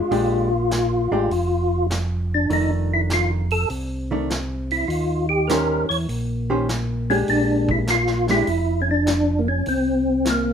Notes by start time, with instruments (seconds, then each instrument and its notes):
Already playing: tonewheel organ F4
0.11 tonewheel organ A#1, hollow-body jazz guitar G#3 D4 G4, open hi-hat
0.71 snare, closed hi-hat
1.11 tonewheel organ A1, hollow-body jazz guitar G#3 D4 G4
1.31 tonewheel organ F1, open hi-hat
1.90 snare, closed hi-hat
2.34 tonewheel organ D4
2.50 tonewheel organ F1 D#4, hollow-body jazz guitar D#3 A3 D4, open hi-hat
2.94 tonewheel organ E4
3.10 tonewheel organ F4, snare, closed hi-hat
3.50 tonewheel organ A4, open hi-hat
3.70 tonewheel organ C2, open hi-hat
4.11 hollow-body jazz guitar D#3 A3 D4
4.30 snare, closed hi-hat
4.71 tonewheel organ E4, open hi-hat
4.88 tonewheel organ D#2 F4, open hi-hat
5.29 tonewheel organ G4
5.47 hollow-body jazz guitar D#3 C#4 G4 C5, tonewheel organ A#4, snare, closed hi-hat
5.89 tonewheel organ E2 C#5, open hi-hat
6.09 tonewheel organ A#1, open hi-hat
6.50 hollow-body jazz guitar D#3 C#4 G4 C5
6.69 snare, closed hi-hat
7.10 hollow-body jazz guitar G#3 D4 G4, tonewheel organ C#4, open hi-hat
7.28 tonewheel organ A#1 D4, open hi-hat
7.69 tonewheel organ E4, kick
7.87 tonewheel organ F4, snare, closed hi-hat
8.07 snare
8.28 hollow-body jazz guitar G#3 D4 G4, tonewheel organ E4, snare, open hi-hat
8.47 tonewheel organ F1, open hi-hat
8.82 tonewheel organ C#4
8.91 tonewheel organ D4
9.07 snare, closed hi-hat
9.39 tonewheel organ A#3
9.48 tonewheel organ C#4
9.66 tonewheel organ C2 C4, open hi-hat
10.25 snare, closed hi-hat
10.30 tonewheel organ A#3